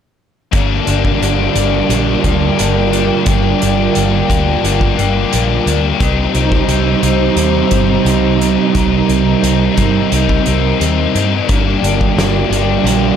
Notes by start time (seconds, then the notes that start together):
0.51 G1 G2 D3 G3 A#3 D4 F4 A#4 G5, kick, closed hi-hat
0.85 G1 G3 A#3 D4, closed hi-hat
1.05 kick
1.19 G1 D3 G3 A#3 D4, closed hi-hat
1.53 G1 G3 A#3 D4, closed hi-hat
1.87 A#1 G2 D3 G3 A#3 D4, closed hi-hat
2.21 D2 G3 A#3 D4, kick, closed hi-hat
2.56 G1 D3 G3 A#3 D4, closed hi-hat
2.90 G3 A#3 D4, closed hi-hat
3.25 G1 G2 D3 G3 A#3 D4, kick, closed hi-hat
3.59 G1 G3 A#3 D4, closed hi-hat
3.93 G1 D3 G3 A#3 D4, closed hi-hat
4.27 D2 G3 A#3 D4, kick, closed hi-hat
4.62 G1 G2 D3 G3 A#3, closed hi-hat
4.66 D4
4.81 kick
4.97 G1 G3 A#3 D4, closed hi-hat
5.30 A#1 D3 G3 A#3 D4, closed hi-hat
5.66 D2 G3 A#3 D4, closed hi-hat
5.99 C2 C3 G3 C4 D#4 C5 A#5, kick, closed hi-hat
6.34 C2 G3 C4 D#4, closed hi-hat
6.52 kick
6.68 C2 C3 G3 C4 D#4, closed hi-hat
7.02 C2 G3 C4 D#4, closed hi-hat
7.36 D#2 C3 G3 C4 D#4, closed hi-hat
7.71 G1 G3 C4 D#4, kick, closed hi-hat
8.04 C2 C3 G3 C4 D#4, closed hi-hat
8.39 G3 C4 D#4, closed hi-hat
8.74 C2 C3 G3 C4 D#4 A#4, kick, closed hi-hat
9.07 C2 G3 C4 D#4, closed hi-hat
9.41 C2 C3 G3 C4 D#4, closed hi-hat
9.74 G2 C4 D#4, kick, closed hi-hat
9.78 G3
10.11 C2 C3 G3 C4 D#4, closed hi-hat
10.29 kick
10.45 C2 G3 C4 D#4, closed hi-hat
10.78 D#2 C3 G3 C4 D#4, closed hi-hat
11.13 G2 G3 C4 D#4, closed hi-hat
11.46 G1 G2 D3 G3 A#3 D4 F4 A#4 G5, kick, closed hi-hat
11.81 G1 G3 A#3 D4, closed hi-hat
12.01 kick
12.15 G1 D3 G3 A#3 D4, snare, closed hi-hat
12.50 G1 A#3 D4, closed hi-hat
12.54 G3
12.83 A#1 G2 D3 G3 A#3 D4, closed hi-hat